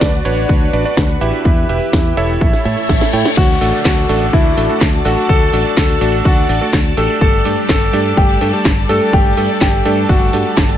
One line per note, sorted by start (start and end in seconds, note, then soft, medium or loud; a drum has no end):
0.00 0.20 D2 medium
0.00 0.22 D4 medium
0.00 1.41 D4 medium
0.00 0.22 F#4 medium
0.00 1.43 F#4 medium
0.00 0.22 B4 medium
0.00 2.38 B4 medium
0.00 0.22 D5 medium
0.00 kick loud
0.00 snare loud
0.00 closed hi-hat medium
0.13 closed hi-hat soft
0.25 0.44 A1 medium
0.25 0.70 D4 loud
0.25 0.70 F#4 medium
0.25 0.70 B4 medium
0.25 0.70 C#5 loud
0.25 closed hi-hat medium
0.37 closed hi-hat soft
0.49 0.68 D2 medium
0.49 kick loud
0.49 closed hi-hat medium
0.61 closed hi-hat soft
0.73 0.82 A1 medium
0.73 0.82 D4 medium
0.73 0.82 F#4 medium
0.73 0.82 B4 medium
0.73 0.82 D5 medium
0.73 closed hi-hat loud
0.85 0.98 D4 medium
0.85 0.98 F#4 medium
0.85 0.98 B4 medium
0.85 0.98 D5 medium
0.85 closed hi-hat soft
0.97 1.16 D2 loud
0.97 kick loud
0.97 snare loud
0.97 closed hi-hat medium
1.09 closed hi-hat soft
1.21 1.30 A1 medium
1.21 1.66 E4 medium
1.21 1.66 G4 medium
1.21 1.66 B4 medium
1.21 1.66 E5 loud
1.21 closed hi-hat medium
1.33 closed hi-hat soft
1.45 1.64 E2 medium
1.45 2.40 E4 medium
1.45 2.40 G4 medium
1.45 kick loud
1.45 closed hi-hat medium
1.57 closed hi-hat soft
1.69 1.78 E1 medium
1.69 2.14 E4 medium
1.69 2.14 G4 medium
1.69 2.14 B4 medium
1.69 2.14 E5 medium
1.69 closed hi-hat loud
1.81 closed hi-hat soft
1.93 2.12 E2 medium
1.93 kick loud
1.93 snare loud
1.93 closed hi-hat medium
2.05 closed hi-hat soft
2.17 2.36 E1 medium
2.17 2.62 E4 loud
2.17 2.62 A4 medium
2.17 2.62 C#5 medium
2.17 2.62 E5 loud
2.17 closed hi-hat medium
2.29 closed hi-hat soft
2.41 2.50 A1 medium
2.41 3.36 A3 medium
2.41 3.36 A4 medium
2.41 3.36 C#5 medium
2.41 3.36 E5 medium
2.41 kick loud
2.41 closed hi-hat medium
2.41 reverse cymbal medium
2.53 snare soft
2.53 closed hi-hat soft
2.65 2.74 A2 loud
2.65 3.10 E4 medium
2.65 3.10 A4 medium
2.65 3.10 C#5 medium
2.65 3.10 E5 medium
2.65 closed hi-hat medium
2.77 closed hi-hat soft
2.89 2.98 A1 medium
2.89 kick loud
2.89 snare medium
2.89 closed hi-hat medium
3.01 snare medium
3.01 closed hi-hat soft
3.13 3.22 A2 medium
3.13 3.26 E4 medium
3.13 3.26 A4 medium
3.13 3.26 C#5 medium
3.13 3.26 G5 loud
3.13 closed hi-hat loud
3.25 snare medium
3.25 closed hi-hat soft
3.37 3.56 D2 loud
3.37 7.17 F#4 medium
3.37 3.76 F#4 loud
3.37 10.78 A4 medium
3.37 10.78 D5 medium
3.37 9.09 A5 medium
3.37 kick loud
3.37 closed hi-hat medium
3.37 crash loud
3.37 downlifter medium
3.49 closed hi-hat soft
3.61 3.70 A1 medium
3.61 4.06 A3 medium
3.61 4.06 D4 medium
3.61 4.06 F#4 medium
3.61 4.06 A4 medium
3.61 open hi-hat loud
3.73 closed hi-hat soft
3.85 4.04 D2 medium
3.85 4.24 F#4 loud
3.85 kick loud
3.85 snare loud
3.85 clap loud
3.85 closed hi-hat medium
3.97 closed hi-hat soft
4.09 4.28 A1 medium
4.09 4.54 A3 loud
4.09 4.54 D4 medium
4.09 4.54 F#4 medium
4.09 4.54 A4 loud
4.09 open hi-hat medium
4.21 closed hi-hat soft
4.33 4.52 D2 medium
4.33 4.72 E4 medium
4.33 kick loud
4.33 closed hi-hat medium
4.45 closed hi-hat soft
4.57 4.66 A1 medium
4.57 4.66 A3 medium
4.57 4.66 D4 medium
4.57 4.66 F#4 medium
4.57 4.66 A4 medium
4.57 open hi-hat loud
4.69 4.82 A3 medium
4.69 4.82 D4 medium
4.69 4.82 F#4 medium
4.69 4.82 A4 medium
4.69 closed hi-hat soft
4.81 5.00 D2 medium
4.81 kick loud
4.81 snare loud
4.81 clap medium
4.81 closed hi-hat medium
4.93 closed hi-hat soft
5.05 5.14 A1 medium
5.05 5.50 A3 loud
5.05 5.50 D4 medium
5.05 5.25 F#4 medium
5.05 5.50 F#4 medium
5.05 5.50 A4 loud
5.05 open hi-hat medium
5.17 closed hi-hat soft
5.29 5.48 D2 medium
5.29 5.68 A4 loud
5.29 kick loud
5.29 closed hi-hat medium
5.41 closed hi-hat soft
5.53 5.62 A1 medium
5.53 5.98 A3 medium
5.53 5.98 D4 medium
5.53 5.98 F#4 medium
5.53 5.98 A4 medium
5.53 open hi-hat loud
5.65 closed hi-hat soft
5.77 5.96 D2 medium
5.77 6.16 A4 loud
5.77 kick loud
5.77 snare loud
5.77 clap loud
5.77 closed hi-hat medium
5.89 closed hi-hat soft
6.01 6.20 A1 medium
6.01 6.46 A3 loud
6.01 6.46 D4 medium
6.01 6.46 F#4 medium
6.01 6.46 A4 loud
6.01 open hi-hat medium
6.13 closed hi-hat soft
6.25 6.44 D2 loud
6.25 6.64 F#4 medium
6.25 kick loud
6.25 closed hi-hat medium
6.37 closed hi-hat soft
6.49 6.58 A1 medium
6.49 6.58 A3 medium
6.49 6.58 D4 medium
6.49 6.58 F#4 medium
6.49 6.58 A4 medium
6.49 open hi-hat loud
6.61 6.74 A3 medium
6.61 6.74 D4 medium
6.61 6.74 F#4 medium
6.61 6.74 A4 loud
6.61 closed hi-hat soft
6.73 6.92 D2 medium
6.73 kick loud
6.73 snare loud
6.73 clap medium
6.73 closed hi-hat medium
6.85 closed hi-hat soft
6.97 7.06 A1 medium
6.97 7.42 A3 loud
6.97 7.42 D4 medium
6.97 7.42 G4 medium
6.97 7.17 A4 medium
6.97 7.42 A4 loud
6.97 open hi-hat medium
7.09 closed hi-hat soft
7.21 7.40 G1 loud
7.21 10.78 G3 medium
7.21 7.60 A4 loud
7.21 kick loud
7.21 closed hi-hat medium
7.33 closed hi-hat soft
7.45 7.54 G2 medium
7.45 7.90 A3 medium
7.45 7.90 D4 medium
7.45 7.90 G4 medium
7.45 7.90 A4 medium
7.45 open hi-hat loud
7.57 closed hi-hat soft
7.69 7.88 G1 medium
7.69 8.08 A4 loud
7.69 kick loud
7.69 snare loud
7.69 clap loud
7.69 closed hi-hat medium
7.81 closed hi-hat soft
7.93 8.12 G2 medium
7.93 8.38 A3 loud
7.93 8.38 D4 medium
7.93 8.38 G4 medium
7.93 8.38 A4 loud
7.93 open hi-hat medium
8.05 closed hi-hat soft
8.17 8.36 G1 loud
8.17 8.56 G4 loud
8.17 kick loud
8.17 closed hi-hat medium
8.29 closed hi-hat soft
8.41 8.50 G2 loud
8.41 8.50 A3 medium
8.41 8.50 D4 medium
8.41 8.50 G4 medium
8.41 8.50 A4 loud
8.41 open hi-hat loud
8.53 8.66 A3 medium
8.53 8.66 D4 medium
8.53 8.66 G4 medium
8.53 8.66 A4 loud
8.53 closed hi-hat soft
8.65 8.84 G1 medium
8.65 kick loud
8.65 snare loud
8.65 clap medium
8.65 closed hi-hat medium
8.77 closed hi-hat soft
8.89 8.98 G2 medium
8.89 9.34 A3 medium
8.89 9.34 D4 medium
8.89 9.34 G4 medium
8.89 9.34 A4 loud
8.89 9.09 A4 medium
8.89 open hi-hat medium
9.01 closed hi-hat soft
9.13 9.32 G1 loud
9.13 9.52 G4 loud
9.13 10.78 A5 medium
9.13 kick loud
9.13 closed hi-hat medium
9.25 closed hi-hat soft
9.37 9.46 G2 medium
9.37 9.82 A3 medium
9.37 9.82 D4 medium
9.37 9.82 G4 medium
9.37 9.82 A4 medium
9.37 open hi-hat loud
9.49 closed hi-hat soft
9.61 9.80 G1 medium
9.61 10.00 G4 loud
9.61 kick loud
9.61 snare loud
9.61 clap loud
9.61 closed hi-hat medium
9.73 closed hi-hat soft
9.85 10.04 G2 medium
9.85 10.30 A3 loud
9.85 10.30 D4 medium
9.85 10.30 G4 medium
9.85 10.30 A4 loud
9.85 open hi-hat medium
9.97 closed hi-hat soft
10.09 10.28 G1 loud
10.09 10.48 F#4 medium
10.09 kick loud
10.09 closed hi-hat medium
10.21 closed hi-hat soft
10.33 10.43 G2 medium
10.33 10.78 A3 medium
10.33 10.78 D4 medium
10.33 10.78 G4 medium
10.33 10.78 A4 medium
10.33 open hi-hat loud
10.45 closed hi-hat soft
10.57 10.76 G1 medium
10.57 kick loud
10.57 snare loud
10.57 clap medium
10.57 closed hi-hat medium
10.69 closed hi-hat soft